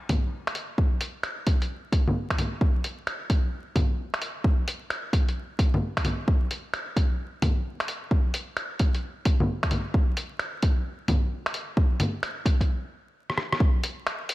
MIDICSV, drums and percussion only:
0, 0, Header, 1, 2, 480
1, 0, Start_track
1, 0, Tempo, 458015
1, 817, Time_signature, 4, 2, 24, 8
1, 15033, End_track
2, 0, Start_track
2, 0, Title_t, "Drums"
2, 97, Note_on_c, 9, 42, 53
2, 97, Note_on_c, 9, 61, 57
2, 99, Note_on_c, 9, 36, 94
2, 202, Note_off_c, 9, 42, 0
2, 202, Note_off_c, 9, 61, 0
2, 204, Note_off_c, 9, 36, 0
2, 496, Note_on_c, 9, 26, 95
2, 496, Note_on_c, 9, 42, 30
2, 577, Note_off_c, 9, 42, 0
2, 577, Note_on_c, 9, 42, 54
2, 600, Note_off_c, 9, 26, 0
2, 682, Note_off_c, 9, 42, 0
2, 818, Note_on_c, 9, 36, 112
2, 923, Note_off_c, 9, 36, 0
2, 1055, Note_on_c, 9, 42, 55
2, 1160, Note_off_c, 9, 42, 0
2, 1293, Note_on_c, 9, 26, 99
2, 1293, Note_on_c, 9, 42, 31
2, 1398, Note_off_c, 9, 26, 0
2, 1398, Note_off_c, 9, 42, 0
2, 1536, Note_on_c, 9, 42, 56
2, 1538, Note_on_c, 9, 36, 103
2, 1641, Note_off_c, 9, 42, 0
2, 1642, Note_off_c, 9, 36, 0
2, 1696, Note_on_c, 9, 42, 30
2, 1800, Note_off_c, 9, 42, 0
2, 2017, Note_on_c, 9, 36, 100
2, 2019, Note_on_c, 9, 42, 55
2, 2122, Note_off_c, 9, 36, 0
2, 2123, Note_off_c, 9, 42, 0
2, 2175, Note_on_c, 9, 61, 63
2, 2280, Note_off_c, 9, 61, 0
2, 2415, Note_on_c, 9, 36, 59
2, 2416, Note_on_c, 9, 26, 102
2, 2416, Note_on_c, 9, 42, 31
2, 2499, Note_off_c, 9, 42, 0
2, 2499, Note_on_c, 9, 42, 55
2, 2499, Note_on_c, 9, 61, 51
2, 2520, Note_off_c, 9, 26, 0
2, 2520, Note_off_c, 9, 36, 0
2, 2604, Note_off_c, 9, 42, 0
2, 2604, Note_off_c, 9, 61, 0
2, 2737, Note_on_c, 9, 36, 113
2, 2842, Note_off_c, 9, 36, 0
2, 2978, Note_on_c, 9, 42, 52
2, 3083, Note_off_c, 9, 42, 0
2, 3218, Note_on_c, 9, 26, 104
2, 3218, Note_on_c, 9, 42, 30
2, 3323, Note_off_c, 9, 26, 0
2, 3323, Note_off_c, 9, 42, 0
2, 3456, Note_on_c, 9, 36, 106
2, 3456, Note_on_c, 9, 42, 54
2, 3561, Note_off_c, 9, 36, 0
2, 3561, Note_off_c, 9, 42, 0
2, 3937, Note_on_c, 9, 36, 102
2, 3938, Note_on_c, 9, 42, 54
2, 3938, Note_on_c, 9, 61, 55
2, 4041, Note_off_c, 9, 36, 0
2, 4043, Note_off_c, 9, 42, 0
2, 4043, Note_off_c, 9, 61, 0
2, 4336, Note_on_c, 9, 26, 106
2, 4336, Note_on_c, 9, 42, 29
2, 4418, Note_off_c, 9, 42, 0
2, 4418, Note_on_c, 9, 42, 55
2, 4441, Note_off_c, 9, 26, 0
2, 4523, Note_off_c, 9, 42, 0
2, 4657, Note_on_c, 9, 36, 113
2, 4762, Note_off_c, 9, 36, 0
2, 4901, Note_on_c, 9, 42, 53
2, 5006, Note_off_c, 9, 42, 0
2, 5139, Note_on_c, 9, 26, 103
2, 5139, Note_on_c, 9, 42, 29
2, 5244, Note_off_c, 9, 26, 0
2, 5244, Note_off_c, 9, 42, 0
2, 5377, Note_on_c, 9, 36, 106
2, 5379, Note_on_c, 9, 42, 52
2, 5482, Note_off_c, 9, 36, 0
2, 5484, Note_off_c, 9, 42, 0
2, 5539, Note_on_c, 9, 42, 29
2, 5644, Note_off_c, 9, 42, 0
2, 5858, Note_on_c, 9, 36, 103
2, 5860, Note_on_c, 9, 42, 51
2, 5963, Note_off_c, 9, 36, 0
2, 5965, Note_off_c, 9, 42, 0
2, 6016, Note_on_c, 9, 61, 59
2, 6121, Note_off_c, 9, 61, 0
2, 6256, Note_on_c, 9, 36, 58
2, 6257, Note_on_c, 9, 26, 104
2, 6257, Note_on_c, 9, 42, 29
2, 6337, Note_off_c, 9, 42, 0
2, 6337, Note_on_c, 9, 42, 53
2, 6337, Note_on_c, 9, 61, 48
2, 6361, Note_off_c, 9, 26, 0
2, 6361, Note_off_c, 9, 36, 0
2, 6442, Note_off_c, 9, 42, 0
2, 6442, Note_off_c, 9, 61, 0
2, 6579, Note_on_c, 9, 36, 108
2, 6684, Note_off_c, 9, 36, 0
2, 6820, Note_on_c, 9, 42, 51
2, 6925, Note_off_c, 9, 42, 0
2, 7058, Note_on_c, 9, 26, 99
2, 7058, Note_on_c, 9, 42, 29
2, 7163, Note_off_c, 9, 26, 0
2, 7163, Note_off_c, 9, 42, 0
2, 7299, Note_on_c, 9, 36, 101
2, 7301, Note_on_c, 9, 42, 52
2, 7404, Note_off_c, 9, 36, 0
2, 7406, Note_off_c, 9, 42, 0
2, 7779, Note_on_c, 9, 42, 50
2, 7779, Note_on_c, 9, 61, 56
2, 7780, Note_on_c, 9, 36, 99
2, 7883, Note_off_c, 9, 42, 0
2, 7883, Note_off_c, 9, 61, 0
2, 7884, Note_off_c, 9, 36, 0
2, 8176, Note_on_c, 9, 26, 99
2, 8176, Note_on_c, 9, 42, 28
2, 8260, Note_off_c, 9, 42, 0
2, 8260, Note_on_c, 9, 42, 52
2, 8281, Note_off_c, 9, 26, 0
2, 8365, Note_off_c, 9, 42, 0
2, 8500, Note_on_c, 9, 36, 104
2, 8605, Note_off_c, 9, 36, 0
2, 8738, Note_on_c, 9, 42, 52
2, 8843, Note_off_c, 9, 42, 0
2, 8977, Note_on_c, 9, 26, 96
2, 8977, Note_on_c, 9, 42, 29
2, 9082, Note_off_c, 9, 26, 0
2, 9082, Note_off_c, 9, 42, 0
2, 9216, Note_on_c, 9, 42, 51
2, 9220, Note_on_c, 9, 36, 97
2, 9321, Note_off_c, 9, 42, 0
2, 9324, Note_off_c, 9, 36, 0
2, 9374, Note_on_c, 9, 42, 28
2, 9479, Note_off_c, 9, 42, 0
2, 9698, Note_on_c, 9, 42, 51
2, 9700, Note_on_c, 9, 36, 95
2, 9803, Note_off_c, 9, 42, 0
2, 9805, Note_off_c, 9, 36, 0
2, 9854, Note_on_c, 9, 61, 63
2, 9959, Note_off_c, 9, 61, 0
2, 10092, Note_on_c, 9, 26, 97
2, 10092, Note_on_c, 9, 42, 28
2, 10097, Note_on_c, 9, 36, 54
2, 10175, Note_off_c, 9, 42, 0
2, 10175, Note_on_c, 9, 42, 52
2, 10175, Note_on_c, 9, 61, 50
2, 10197, Note_off_c, 9, 26, 0
2, 10202, Note_off_c, 9, 36, 0
2, 10280, Note_off_c, 9, 42, 0
2, 10280, Note_off_c, 9, 61, 0
2, 10419, Note_on_c, 9, 36, 104
2, 10524, Note_off_c, 9, 36, 0
2, 10657, Note_on_c, 9, 42, 53
2, 10762, Note_off_c, 9, 42, 0
2, 10893, Note_on_c, 9, 26, 98
2, 10893, Note_on_c, 9, 42, 29
2, 10998, Note_off_c, 9, 26, 0
2, 10998, Note_off_c, 9, 42, 0
2, 11135, Note_on_c, 9, 42, 52
2, 11138, Note_on_c, 9, 36, 98
2, 11239, Note_off_c, 9, 42, 0
2, 11243, Note_off_c, 9, 36, 0
2, 11614, Note_on_c, 9, 42, 50
2, 11614, Note_on_c, 9, 61, 58
2, 11617, Note_on_c, 9, 36, 93
2, 11719, Note_off_c, 9, 42, 0
2, 11719, Note_off_c, 9, 61, 0
2, 11722, Note_off_c, 9, 36, 0
2, 12012, Note_on_c, 9, 26, 94
2, 12012, Note_on_c, 9, 42, 30
2, 12095, Note_off_c, 9, 42, 0
2, 12095, Note_on_c, 9, 42, 54
2, 12117, Note_off_c, 9, 26, 0
2, 12200, Note_off_c, 9, 42, 0
2, 12335, Note_on_c, 9, 36, 110
2, 12440, Note_off_c, 9, 36, 0
2, 12574, Note_on_c, 9, 42, 55
2, 12574, Note_on_c, 9, 61, 61
2, 12678, Note_off_c, 9, 42, 0
2, 12678, Note_off_c, 9, 61, 0
2, 12816, Note_on_c, 9, 26, 97
2, 12816, Note_on_c, 9, 42, 31
2, 12921, Note_off_c, 9, 26, 0
2, 12921, Note_off_c, 9, 42, 0
2, 13054, Note_on_c, 9, 36, 99
2, 13057, Note_on_c, 9, 42, 54
2, 13159, Note_off_c, 9, 36, 0
2, 13162, Note_off_c, 9, 42, 0
2, 13212, Note_on_c, 9, 36, 59
2, 13216, Note_on_c, 9, 42, 29
2, 13316, Note_off_c, 9, 36, 0
2, 13321, Note_off_c, 9, 42, 0
2, 13935, Note_on_c, 9, 37, 50
2, 14018, Note_off_c, 9, 37, 0
2, 14018, Note_on_c, 9, 37, 75
2, 14122, Note_off_c, 9, 37, 0
2, 14174, Note_on_c, 9, 37, 78
2, 14256, Note_on_c, 9, 36, 113
2, 14279, Note_off_c, 9, 37, 0
2, 14361, Note_off_c, 9, 36, 0
2, 14499, Note_on_c, 9, 42, 58
2, 14604, Note_off_c, 9, 42, 0
2, 14741, Note_on_c, 9, 26, 105
2, 14741, Note_on_c, 9, 42, 32
2, 14845, Note_off_c, 9, 26, 0
2, 14845, Note_off_c, 9, 42, 0
2, 14977, Note_on_c, 9, 42, 58
2, 15033, Note_off_c, 9, 42, 0
2, 15033, End_track
0, 0, End_of_file